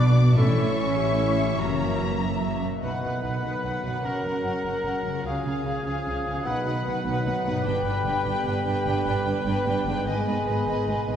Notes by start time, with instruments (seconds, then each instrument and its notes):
Already playing: double bass section B1, cello section B2, trombone section B2 D4, harp B2 F#3 D4 B4 D5 D6, viola section B3, violin section D5 D6
0.07 harp B3
0.18 harp F#3
0.28 harp B3
0.36 double bass section A1, harp A2, cello section A2, trombone section E3 C#4, viola section C#4, trumpet E4, clarinet A4, violin section E5 C#6
0.48 harp E3
0.58 harp C#4
0.68 harp E4
0.78 harp C#5
0.89 harp E4
0.97 trumpet E4, clarinet G4, harp E5
1.08 harp C#6
1.18 harp E5
1.29 harp C#6
1.40 harp E5
1.49 harp C#6
1.58 double bass section F#1, harp F#2, cello section F#2, trombone section E3 A#3, trumpet C#4, clarinet F#4, violin section A#5
1.69 harp C#3
1.80 harp A#3
1.90 harp E4
2.00 harp C#5
2.11 harp A#4
2.21 harp E5
2.31 harp C#6
2.41 harp E5
2.51 harp C#6
2.62 harp B2 E5
2.70 harp B3 C#6
2.74 harp F#4
2.78 trombone section F#3, harp D#5, flute F#5
2.83 double bass section B1, cello section B2, trombone section D#3, french horn section B3 B4, viola section D#4, clarinet D#4, violin section B4 F#5, oboe B4
3.03 double bass section B1, cello section B2, viola section D#4, violin section B4 F#5
3.23 double bass section B1, cello section B2, viola section D#4, violin section B4 F#5
3.43 double bass section B1, cello section B2, viola section D#4, violin section B4 F#5
3.63 double bass section B1, cello section B2, viola section D#4, violin section B4 F#5
3.83 double bass section B1, harp F#2, cello section B2, viola section D#4, violin section B4 F#5
3.90 harp A#3
3.95 harp F#4
3.99 double bass section F#1, french horn section C#4, viola section C#4, harp C#5
4.04 cello section F#2, trombone section C#3, clarinet C#4, french horn section A#4, violin section A#4 F#5, oboe A#4
4.23 double bass section F#1, cello section F#2, viola section C#4, violin section A#4 F#5
4.43 double bass section F#1, cello section F#2, viola section C#4, violin section A#4 F#5
4.63 double bass section F#1, cello section F#2, viola section C#4, violin section A#4 F#5
4.84 double bass section F#1, cello section F#2, viola section C#4, violin section A#4 F#5
5.04 double bass section F#1, cello section F#2, harp C#3, viola section C#4, violin section A#4 F#5
5.11 harp G#3
5.16 harp F4
5.20 double bass section C#2, french horn section G#4, harp C#5
5.24 cello section C#3, viola section C#4, violin section G#4 F5, oboe G#4, flute F5
5.44 double bass section C#2, cello section C#3, viola section C#4, violin section G#4 F5
5.64 double bass section C#2, cello section C#3, viola section C#4, violin section G#4 F5
5.83 double bass section C#2, cello section C#3, trombone section F3, viola section C#4, violin section G#4 F5
6.05 double bass section C#2, cello section C#3, viola section C#4, violin section G#4 F5
6.25 double bass section C#2, harp B2, cello section C#3, viola section C#4, violin section G#4 F5
6.32 harp B3
6.37 harp F#4
6.41 double bass section B1, trombone section F#3, french horn section B3, clarinet D#4, harp D#5, violin section F#5
6.45 cello section B2, trombone section D#3, viola section D#4, french horn section B4, violin section B4, oboe B4, flute F#5
6.65 double bass section B1, cello section B2, viola section D#4, violin section B4 F#5
6.85 double bass section B1, cello section B2, viola section D#4, violin section B4 F#5
7.06 double bass section B1, cello section B2, viola section D#4, violin section B4 F#5
7.25 double bass section B1, cello section B2, viola section D#4, violin section B4 F#5
7.45 double bass section B1, harp G2, cello section B2, viola section D#4, violin section B4 F#5
7.52 harp B3
7.57 harp G4
7.62 double bass section G1, cello section G2, viola section D4, harp D5
7.66 trombone section D3 G3, clarinet D4, violin section B4 G5, flute G5
7.85 double bass section G1, cello section G2, viola section D4, violin section B4 G5
8.05 double bass section G1, cello section G2, viola section D4, violin section B4 G5
8.25 double bass section G1, cello section G2, viola section D4, violin section B4 G5
8.45 double bass section G1, cello section G2, viola section D4, violin section B4 G5
8.65 double bass section G1, cello section G2, viola section D4, violin section B4 G5
8.86 double bass section G1, cello section G2, viola section D4, violin section B4 G5
9.06 double bass section G1, cello section G2, viola section D4, violin section B4 G5
9.25 double bass section G1, cello section G2, viola section D4, violin section B4 G5
9.45 double bass section G1, cello section G2, viola section D4, violin section B4 G5
9.66 double bass section G1, cello section G2, viola section D4, violin section B4 G5
9.86 double bass section G1, cello section G2, harp G#2, viola section D4, violin section B4 G5
9.93 harp B3
9.98 harp D#4
10.02 trombone section D#3, clarinet D#4, harp B4
10.06 double bass section G#1, cello section G#2, trombone section G#3, viola section B3, french horn section G#4, violin section B4 D#5, flute G#5
10.26 double bass section G#1, cello section G#2, viola section B3, violin section B4 D#5
10.47 double bass section G#1, cello section G#2, viola section B3, violin section B4 D#5
10.67 double bass section G#1, cello section G#2, viola section B3, violin section B4 D#5
10.87 double bass section G#1, cello section G#2, viola section B3, violin section B4 D#5
11.08 double bass section G#1, harp G2, cello section G#2, viola section B3, violin section B4 D#5